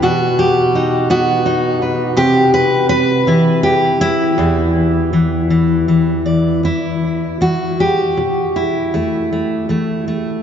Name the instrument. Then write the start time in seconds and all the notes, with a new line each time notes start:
steel-string acoustic guitar
0.02 B2 F#4
0.39 G4
0.75 D#4
1.10 B3 F#4
1.46 D#4
1.82 B4
2.17 C3 G4
2.54 B4
2.89 B4
3.27 E3 E4
3.63 G4
4.01 E4
4.38 E2 E3
5.13 E3
5.50 E3
5.88 E3
6.26 D5
6.63 E2 E4
7.41 E3 F#4
7.80 G4
8.17 B2
8.56 E4
8.94 E2 A3
9.33 A3
9.69 E3 A3
10.08 A3